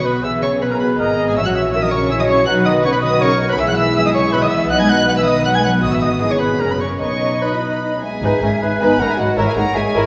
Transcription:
Already playing: B1 B3 F#4 B4
0.04 B2 B4 B5
0.23 B1 E3 B3 G#4 E5 E6
0.43 C#3 C#5 C#6
0.61 B2 B3 G#4 B4 B5
0.70 A#2 A#4 A#5
0.80 B2 B4 B5
0.98 G#1 A#2 G#4 A#4 D#5 A#5
1.27 G#2 G#4 G#5
1.36 A#1 E3 F#3 C#4 F#4 C#5 E5 E6
1.46 F#3 F#5 F#6
1.55 E3 E5 E6
1.73 E3 F#3 C#4 F#4 A#4 E5 E6
1.82 D#3 D#5 D#6
1.91 C#3 C#5 C#6
2.10 E3 F#3 E4 F#4 G#4 C#5 E5 E6
2.19 D#3 D#5 D#6
2.29 C#3 C#5 C#6
2.46 B1 F#3 D#4 F#4 B4 F#5 F#6
2.65 D#3 D#5 D#6
2.83 C#3 F#4 B4 C#5 C#6
2.93 B2 B4 B5
3.02 D#3 D#5 D#6
3.21 C#3 A#4 C#5 C#6
3.49 B2 B4 B5
3.58 B1 E3 G#3 E4 G#4 E5 E6
3.68 F#3 F#5 F#6
3.77 E3 E5 E6
3.96 E3 B3 G#4 E5 E6
4.05 D#3 D#5 D#6
4.14 C#3 C#5 C#6
4.33 B2 B4 E5 B5
4.42 D#3 D#5 D#6
4.51 E3 E5 E6
4.70 B1 F#3 B3 D#4 D#5 F#5 F#6
4.79 G#3 G#5 G#6
4.89 F#3 F#5 F#6
5.08 F#3 B3 B4 F#5 F#6
5.17 E3 E5 E6
5.26 D#3 D#5 D#6
5.45 F#3 F#5 F#6
5.55 G#3 G#5 G#6
5.64 F#3 F#5 F#6
5.82 A1 D#3 F#4 D#5 D#6
5.92 E3 E5 E6
6.01 D#3 D#5 D#6
6.21 G#1 D#3 E4 G#4 D#5 D#6
6.31 C#3 C#5 C#6
6.40 B2 B4 B5
6.60 F#1 A#2 A#3 C#4 A#4 A#5
6.70 B2 B4 B5
6.80 C#3 C#5 C#6
7.00 B1 C#3 B3 D#4 B4 C#5 D#5 C#6
7.41 B2 D#4 B4 B5
7.53 E4
7.63 D#4
7.83 D#4
7.94 C#4
8.02 G#3 B3 G#4 E5 G#5
8.22 G#1 G#2 D#4 B4
8.42 G#1 G#2 C#4 A#4
8.62 G#1 G#2 D#4 B4
8.80 G#1 G#2 B3 D#4 B4 G#5 B5
8.99 G#1 G#2 A#3 C#4 A#4 F#5 A#5
9.08 G#3 G#4 E5 G#5
9.18 G#1 G#2 F#3 D#4 F#4 B4 D#5 F#5
9.37 G#1 G#2 E3 E4 A#4 C#5 E5
9.46 G#3 G#4 E5 G#5
9.56 G#1 G#2 A#3 D#4 G#4 A#4 F#5 A#5
9.75 G#1 G#2 G#3 E4 G#4 A#4 E5 G#5
9.93 G#1 G#2 E4 A#4

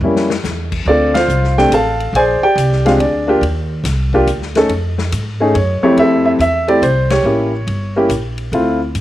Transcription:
0.01 F2 G3 A#3 C#4 E4
0.16 snare
0.30 snare
0.43 E2, snare, hi-hat pedal
0.72 kick, crash
0.85 D2 A3 C4 D4 F4 A4 D5
1.14 F4 C5 F5, snare, ride
1.28 C2, hi-hat pedal
1.44 snare
1.58 A3 C4 D4 G4 G5, snare
1.70 A1 A4 F5 A5, hi-hat pedal, ride
2.00 ride
2.13 A#1 G#4 C5 D5 G#5, ride
2.42 G4 D5 G5, muted upright bass stroke
2.56 C2, hi-hat pedal, ride
2.72 snare
2.85 G#3 C4 D4 F4 G4 F5, snare, ride
2.98 D2 D4 G#4 D5, ride
3.27 A#3 D4 F4 G4
3.41 D#2, ride
3.84 C2, snare, hi-hat pedal, ride
4.13 A#3 D4 F4 G4, kick
4.27 D2, hi-hat pedal, ride
4.42 snare
4.55 A3 C#4 D#4 A4, snare, ride
4.69 F2, ride
4.98 snare
5.12 G#2, hi-hat pedal, ride
5.40 A3 C#4 D#4 G#4
5.54 F#2 C#5, ride
5.82 F2 A3 C4 E4 G4 C#5, muted upright bass stroke
5.97 F2 E5, ride
6.01 A4
6.26 E5
6.39 E2 E5, hi-hat pedal, ride
6.68 A3 C4 E4 G4 D5, ride
6.82 C2 C5, hi-hat pedal, ride
7.10 G4 C#5, snare, ride
7.23 A1 A#3 C#4 E4 G4
7.67 G1, ride
7.96 A#3 C#4 E4 G4
8.09 A#1, hi-hat pedal, ride
8.38 ride
8.52 D2 A3 C4 E4 F4, ride
8.95 G2, hi-hat pedal, ride

